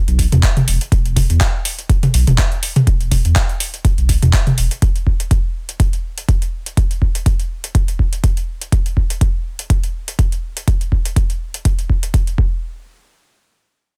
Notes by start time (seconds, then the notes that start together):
0.08 B1, closed hi-hat
0.19 kick, open hi-hat
0.32 E2, closed hi-hat, mid tom
0.43 kick, clap, closed hi-hat
0.57 closed hi-hat, mid tom
0.68 E1, open hi-hat
0.81 closed hi-hat
0.92 E1, kick, closed hi-hat
1.06 closed hi-hat
1.16 kick, open hi-hat, mid tom
1.30 E2, closed hi-hat
1.41 kick, clap, closed hi-hat
1.65 open hi-hat
1.79 closed hi-hat
1.90 kick, closed hi-hat
2.03 closed hi-hat, mid tom
2.14 B1, open hi-hat
2.27 E1, closed hi-hat, mid tom
2.38 kick, clap, closed hi-hat
2.52 closed hi-hat
2.63 open hi-hat
2.76 closed hi-hat, mid tom
2.87 E1, kick, closed hi-hat
3.01 closed hi-hat
3.11 kick, open hi-hat, mid tom
3.25 E2, closed hi-hat
3.36 kick, clap, closed hi-hat
3.49 closed hi-hat
3.60 open hi-hat
3.74 closed hi-hat
3.85 kick, closed hi-hat
3.98 B1, closed hi-hat
4.09 kick, open hi-hat
4.22 E2, closed hi-hat, mid tom
4.33 kick, clap, closed hi-hat
4.47 closed hi-hat, mid tom
4.58 E1, open hi-hat
4.71 closed hi-hat
4.82 kick, closed hi-hat
4.96 closed hi-hat
5.07 kick
5.20 closed hi-hat
5.31 kick, closed hi-hat
5.69 closed hi-hat
5.80 kick, closed hi-hat
5.93 closed hi-hat
6.18 closed hi-hat
6.29 kick, closed hi-hat
6.42 closed hi-hat
6.66 closed hi-hat
6.77 kick, closed hi-hat
6.91 closed hi-hat
7.02 kick
7.15 closed hi-hat
7.26 kick, closed hi-hat
7.40 closed hi-hat
7.64 closed hi-hat
7.75 kick, closed hi-hat
7.88 closed hi-hat
7.99 kick
8.13 closed hi-hat
8.24 kick, closed hi-hat
8.37 closed hi-hat
8.62 closed hi-hat
8.72 kick, closed hi-hat
8.86 closed hi-hat
8.97 kick
9.10 closed hi-hat
9.21 kick, closed hi-hat
9.59 closed hi-hat
9.70 kick, closed hi-hat
9.84 closed hi-hat
10.08 closed hi-hat
10.19 kick, closed hi-hat
10.32 closed hi-hat
10.57 closed hi-hat
10.68 kick, closed hi-hat
10.81 closed hi-hat
10.92 kick
11.05 closed hi-hat
11.16 kick, closed hi-hat
11.30 closed hi-hat
11.54 closed hi-hat
11.65 kick, closed hi-hat
11.79 closed hi-hat
11.90 kick
12.03 closed hi-hat
12.14 kick, closed hi-hat
12.27 closed hi-hat
12.38 kick